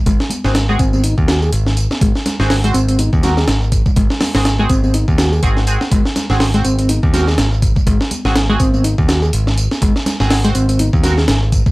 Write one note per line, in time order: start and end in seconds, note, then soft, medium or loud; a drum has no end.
0.06 0.17 G#1 medium
0.06 0.17 G#3 medium
0.06 kick loud
0.06 closed hi-hat medium
0.06 tambourine soft
0.20 snare medium
0.20 tambourine soft
0.30 closed hi-hat medium
0.30 tambourine medium
0.30 high conga medium
0.30 low conga medium
0.45 0.76 G#1 medium
0.45 0.54 C4 medium
0.45 0.53 F#4 medium
0.45 0.54 G#4 medium
0.45 snare soft
0.45 tambourine soft
0.55 snare loud
0.55 closed hi-hat medium
0.55 tambourine soft
0.69 0.74 G#3 loud
0.69 0.78 C4 loud
0.69 0.78 F#4 medium
0.69 0.78 G#4 loud
0.69 tambourine soft
0.69 high conga medium
0.79 1.13 G#1 medium
0.79 0.90 C4 medium
0.79 kick medium
0.79 closed hi-hat medium
0.79 tambourine medium
0.93 1.03 C4 medium
0.93 tambourine soft
0.93 high conga medium
1.03 1.14 D#4 medium
1.03 closed hi-hat medium
1.03 tambourine soft
1.18 1.49 D#2 medium
1.18 kick medium
1.18 tambourine soft
1.28 1.41 F#4 medium
1.28 snare loud
1.28 closed hi-hat medium
1.28 tambourine medium
1.42 1.50 G#4 medium
1.42 tambourine soft
1.52 1.86 G#1 medium
1.52 closed hi-hat medium
1.52 tambourine soft
1.66 snare soft
1.66 tambourine soft
1.77 closed hi-hat medium
1.77 tambourine medium
1.90 snare soft
1.90 tambourine soft
1.90 high conga medium
2.01 2.12 G#1 loud
2.01 2.12 G#3 medium
2.01 kick loud
2.01 closed hi-hat medium
2.01 tambourine soft
2.15 snare soft
2.15 tambourine soft
2.26 snare medium
2.26 closed hi-hat medium
2.26 tambourine medium
2.26 low conga medium
2.39 2.71 G#1 medium
2.39 2.55 C4 medium
2.39 2.55 F#4 medium
2.39 2.55 G#4 loud
2.39 snare soft
2.39 tambourine soft
2.50 snare loud
2.50 open hi-hat medium
2.50 tambourine soft
2.64 2.69 G#3 loud
2.64 2.73 C4 loud
2.64 2.73 F#4 medium
2.64 2.73 C5 loud
2.64 closed hi-hat soft
2.64 tambourine soft
2.74 3.08 G#1 medium
2.74 2.85 C4 medium
2.74 closed hi-hat medium
2.74 tambourine medium
2.88 2.98 C4 medium
2.88 closed hi-hat soft
2.88 tambourine soft
2.99 3.09 D#4 medium
2.99 closed hi-hat medium
2.99 tambourine soft
2.99 high conga medium
3.13 3.44 D#2 medium
3.13 kick medium
3.13 tambourine soft
3.23 3.35 C4 medium
3.23 3.36 F#4 medium
3.23 3.35 F#4 medium
3.23 3.35 A#4 medium
3.23 snare medium
3.23 closed hi-hat medium
3.23 tambourine medium
3.23 high conga medium
3.23 low conga medium
3.37 3.45 G#4 medium
3.37 snare soft
3.37 tambourine soft
3.48 3.81 G#1 medium
3.48 snare loud
3.48 closed hi-hat medium
3.48 tambourine soft
3.62 tambourine soft
3.72 kick medium
3.72 closed hi-hat medium
3.72 tambourine medium
3.86 kick medium
3.86 tambourine soft
3.86 low conga medium
3.96 4.08 G#1 medium
3.96 4.07 G#3 medium
3.96 kick loud
3.96 closed hi-hat medium
3.96 tambourine soft
4.10 snare medium
4.10 tambourine soft
4.21 snare loud
4.21 open hi-hat medium
4.21 tambourine medium
4.21 high conga medium
4.21 low conga medium
4.35 4.66 G#1 medium
4.35 4.44 C4 medium
4.35 4.44 F#4 medium
4.35 4.44 G#4 medium
4.35 snare medium
4.35 open hi-hat medium
4.35 tambourine soft
4.45 snare loud
4.45 closed hi-hat medium
4.45 tambourine soft
4.59 4.64 G#3 loud
4.59 4.68 C4 loud
4.59 4.68 F#4 medium
4.59 4.68 G#4 loud
4.59 tambourine soft
4.59 high conga medium
4.70 5.03 G#1 medium
4.70 4.80 C4 medium
4.70 kick loud
4.70 closed hi-hat medium
4.70 tambourine medium
4.83 4.93 C4 medium
4.83 tambourine soft
4.83 high conga medium
4.94 5.05 D#4 medium
4.94 closed hi-hat medium
4.94 tambourine soft
5.08 5.39 D#2 medium
5.08 kick medium
5.08 tambourine soft
5.18 5.31 F#4 medium
5.18 snare loud
5.18 closed hi-hat medium
5.18 tambourine medium
5.32 5.40 G#4 medium
5.32 tambourine soft
5.43 5.77 G#1 medium
5.43 5.61 C4 medium
5.43 5.61 F#4 medium
5.43 5.61 G#4 medium
5.43 kick medium
5.43 closed hi-hat medium
5.43 tambourine soft
5.57 snare soft
5.57 tambourine soft
5.67 5.79 C4 medium
5.67 5.79 F#4 medium
5.67 5.79 G#4 medium
5.67 closed hi-hat medium
5.67 tambourine medium
5.81 snare soft
5.81 tambourine soft
5.81 high conga medium
5.92 6.03 G#1 medium
5.92 6.02 G#3 medium
5.92 kick loud
5.92 closed hi-hat medium
5.92 tambourine soft
6.05 snare soft
6.05 tambourine soft
6.16 snare medium
6.16 closed hi-hat medium
6.16 tambourine medium
6.16 low conga medium
6.30 6.61 G#1 medium
6.30 6.45 C4 medium
6.30 6.45 F#4 medium
6.30 6.45 G#4 loud
6.30 snare soft
6.30 tambourine soft
6.40 snare loud
6.40 open hi-hat medium
6.40 tambourine soft
6.54 6.59 G#3 loud
6.54 6.63 C4 loud
6.54 6.63 F#4 medium
6.54 6.63 C5 loud
6.54 closed hi-hat soft
6.54 tambourine soft
6.65 6.99 G#1 medium
6.65 6.75 C4 medium
6.65 closed hi-hat medium
6.65 tambourine medium
6.79 6.88 C4 medium
6.79 closed hi-hat soft
6.79 tambourine soft
6.89 7.00 D#4 medium
6.89 closed hi-hat medium
6.89 tambourine soft
6.89 high conga medium
7.03 7.35 D#2 medium
7.03 kick medium
7.03 tambourine soft
7.14 7.26 C4 medium
7.14 7.26 F#4 medium
7.14 7.26 A#4 medium
7.14 snare medium
7.14 closed hi-hat medium
7.14 tambourine medium
7.14 high conga medium
7.14 low conga medium
7.27 7.35 G#4 medium
7.27 snare soft
7.27 tambourine soft
7.38 7.72 G#1 medium
7.38 snare loud
7.38 closed hi-hat medium
7.38 tambourine soft
7.52 tambourine soft
7.62 kick medium
7.62 closed hi-hat medium
7.62 tambourine medium
7.75 kick medium
7.75 tambourine soft
7.75 low conga medium
7.87 7.98 G#1 loud
7.87 7.97 G#3 medium
7.87 kick loud
7.87 closed hi-hat medium
7.87 tambourine soft
8.01 snare medium
8.01 tambourine soft
8.11 closed hi-hat medium
8.11 tambourine medium
8.11 high conga medium
8.11 low conga medium
8.25 8.56 G#1 medium
8.25 8.34 C4 medium
8.25 8.34 F#4 medium
8.25 8.34 G#4 medium
8.25 snare soft
8.25 tambourine soft
8.36 snare loud
8.36 closed hi-hat medium
8.36 tambourine soft
8.49 8.54 G#3 loud
8.49 8.58 C4 loud
8.49 8.58 F#4 medium
8.49 8.58 G#4 loud
8.49 tambourine soft
8.49 high conga medium
8.60 8.94 G#1 medium
8.60 8.70 C4 loud
8.60 kick medium
8.60 closed hi-hat medium
8.60 tambourine medium
8.74 8.83 C4 medium
8.74 tambourine soft
8.74 high conga medium
8.84 8.95 D#4 medium
8.84 closed hi-hat medium
8.84 tambourine soft
8.98 9.30 D#2 medium
8.98 kick medium
8.98 tambourine soft
9.09 9.21 F#4 medium
9.09 snare loud
9.09 closed hi-hat medium
9.09 tambourine medium
9.23 9.31 G#4 medium
9.23 tambourine soft
9.33 9.67 G#1 medium
9.33 closed hi-hat medium
9.33 tambourine soft
9.47 snare soft
9.47 tambourine soft
9.58 closed hi-hat medium
9.58 tambourine medium
9.71 snare soft
9.71 tambourine soft
9.71 high conga medium
9.82 9.93 G#1 loud
9.82 9.92 G#3 medium
9.82 kick loud
9.82 closed hi-hat medium
9.82 tambourine soft
9.96 snare soft
9.96 tambourine soft
10.06 snare medium
10.06 closed hi-hat medium
10.06 tambourine medium
10.06 low conga medium
10.20 10.52 G#1 loud
10.20 10.36 C4 loud
10.20 10.36 F#4 medium
10.20 10.36 G#4 loud
10.20 snare soft
10.20 tambourine soft
10.30 snare loud
10.30 open hi-hat medium
10.30 tambourine soft
10.44 10.49 G#3 loud
10.44 10.53 C4 loud
10.44 10.53 F#4 medium
10.44 10.53 C5 loud
10.44 closed hi-hat soft
10.44 tambourine soft
10.55 10.89 G#1 medium
10.55 10.65 C4 medium
10.55 closed hi-hat medium
10.55 tambourine medium
10.69 10.78 C4 medium
10.69 closed hi-hat soft
10.69 tambourine soft
10.79 10.90 D#4 medium
10.79 closed hi-hat medium
10.79 tambourine soft
10.79 high conga medium
10.93 11.25 D#2 medium
10.93 kick medium
10.93 tambourine soft
11.03 11.16 C4 medium
11.03 11.16 F#4 medium
11.03 11.16 A#4 loud
11.03 snare medium
11.03 closed hi-hat medium
11.03 tambourine medium
11.03 high conga medium
11.03 low conga medium
11.18 11.26 G#4 medium
11.18 snare soft
11.18 tambourine soft
11.28 11.62 G#1 medium
11.28 snare loud
11.28 closed hi-hat medium
11.28 tambourine soft
11.42 tambourine soft
11.52 kick medium
11.52 closed hi-hat medium
11.52 tambourine medium
11.66 kick loud
11.66 tambourine soft
11.66 low conga medium